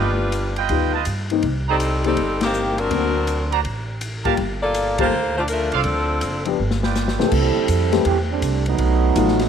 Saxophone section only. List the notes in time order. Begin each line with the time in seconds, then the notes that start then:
Already playing: G3 D4 F4 B4
1.70 G3 C4 D#4 A4
2.07 G3 C4 D#4 A4
2.43 D#3 A#3 C4 G4
2.79 F#3 C4 D4 A#4
4.62 A#3 F4 A4 D5
5.01 A#3 F4 A4 C5
5.38 A3 D4 F4 C5
5.50 F3 A3 D4 A#4
5.75 F3 C4 D4 A4